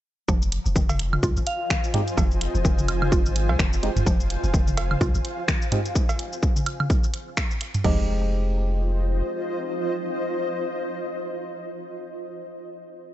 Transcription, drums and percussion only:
0.28 kick loud
0.28 shaker medium
0.42 shaker soft
0.52 closed hi-hat medium
0.66 shaker soft
0.76 kick loud
0.76 shaker medium
0.89 high tom medium
0.89 cowbell medium
0.89 shaker soft
0.99 closed hi-hat medium
1.13 high tom medium
1.13 high woodblock medium
1.23 kick loud
1.23 closed hi-hat soft
1.23 shaker medium
1.37 shaker soft
1.47 closed hi-hat loud
1.70 finger snap loud
1.70 kick loud
1.70 shaker medium
1.84 shaker soft
1.94 closed hi-hat medium
1.94 mid tom medium
2.08 closed hi-hat soft
2.08 shaker soft
2.18 kick loud
2.18 cowbell medium
2.18 shaker medium
2.31 shaker soft
2.41 closed hi-hat loud
2.55 shaker soft
2.65 kick loud
2.65 shaker medium
2.78 high tom medium
2.78 shaker soft
2.88 closed hi-hat medium
2.88 high woodblock medium
3.02 high tom medium
3.02 high woodblock medium
3.12 kick loud
3.12 closed hi-hat soft
3.12 shaker medium
3.26 shaker soft
3.36 closed hi-hat loud
3.49 cowbell medium
3.59 finger snap loud
3.59 kick loud
3.59 shaker medium
3.73 shaker soft
3.83 closed hi-hat medium
3.97 closed hi-hat soft
3.97 mid tom medium
3.97 shaker soft
4.06 kick loud
4.06 shaker medium
4.20 shaker soft
4.30 closed hi-hat loud
4.44 shaker soft
4.54 kick loud
4.54 shaker medium
4.67 high tom medium
4.67 shaker soft
4.77 closed hi-hat loud
4.77 cowbell medium
4.91 high tom medium
4.91 high woodblock medium
5.01 kick loud
5.01 closed hi-hat soft
5.01 shaker medium
5.15 shaker soft
5.25 closed hi-hat loud
5.48 finger snap loud
5.48 kick loud
5.48 shaker medium
5.62 shaker soft
5.72 closed hi-hat medium
5.72 mid tom medium
5.86 closed hi-hat soft
5.86 shaker soft
5.95 kick loud
5.95 shaker medium
6.09 cowbell medium
6.09 shaker soft
6.19 closed hi-hat loud
6.33 shaker soft
6.43 kick loud
6.43 shaker medium
6.56 high tom medium
6.56 shaker soft
6.66 closed hi-hat loud
6.66 high woodblock medium
6.80 high tom medium
6.80 high woodblock medium
6.90 kick loud
6.90 closed hi-hat soft
6.90 shaker medium
7.04 shaker soft
7.14 closed hi-hat loud
7.37 finger snap loud
7.37 kick loud
7.37 cowbell medium
7.37 shaker medium
7.51 shaker soft
7.61 closed hi-hat medium
7.74 closed hi-hat soft
7.74 mid tom medium
7.74 shaker soft
7.84 kick loud
7.84 floor tom loud
7.84 crash medium

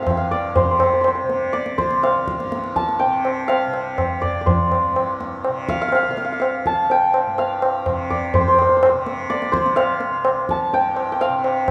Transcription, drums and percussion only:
0.07 tabla na medium
0.07 tabla ge medium
0.31 tabla te medium
0.56 tabla tin loud
0.56 tabla ge medium
0.80 tabla na medium
1.04 tabla na medium
1.29 tabla te medium
1.53 tabla te medium
1.66 tabla te medium
1.79 tabla ke medium
1.91 tabla te medium
2.04 tabla na medium
2.28 tabla ke medium
2.40 tabla te medium
2.52 tabla te medium
2.64 tabla te medium
2.76 tabla ke medium
2.89 tabla te medium
3.01 tabla tin medium
3.25 tabla na medium
3.50 tabla na medium
3.74 tabla na medium
3.98 tabla na medium
3.98 tabla ge medium
4.23 tabla ge soft
4.47 tabla tin medium
4.47 tabla ge medium
4.72 tabla na medium
4.96 tabla na medium
5.20 tabla te medium
5.44 tabla na medium
5.69 tabla ke medium
5.92 tabla na medium
6.17 tabla te medium
6.42 tabla na medium
6.66 tabla ke soft
6.90 tabla tin medium
7.14 tabla na medium
7.38 tabla na medium
7.62 tabla na medium
7.86 tabla na medium
7.86 tabla ge medium
8.11 tabla ge soft
8.34 tabla tin loud
8.34 tabla ge loud
8.59 tabla na medium
8.83 tabla na medium
9.06 tabla te medium
9.30 tabla te medium
9.42 tabla te medium
9.54 tabla ke medium
9.66 tabla te medium
9.77 tabla na medium
10.00 tabla te medium
10.25 tabla na medium
10.49 tabla ke medium
10.73 tabla tin medium
10.96 tabla na medium
11.21 tabla na medium
11.44 tabla na medium

